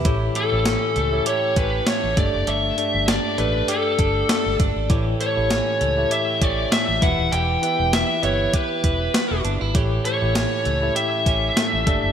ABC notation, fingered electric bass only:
X:1
M:4/4
L:1/16
Q:"Swing 16ths" 1/4=99
K:Amix
V:1 name="Fingered electric bass" clef=bass
A,,,2 z A,,,2 z C,,2 z2 A,,,2 z A,,, G,,, F,,, | G,,,2 z G,,,2 z A,,,2 z2 G,,,2 z G,,, G,,, ^G,,, | A,,,2 z A,,,2 z C,,2 z2 A,,,2 z A,,, E,,, ^D,,, | E,,,2 z E,,,2 z G,,,2 z2 E,,,2 z E,,, G,,, ^G,,, |
A,,,2 z A,,,2 z C,,2 z2 A,,,2 z A,,, G,,, F,,, |]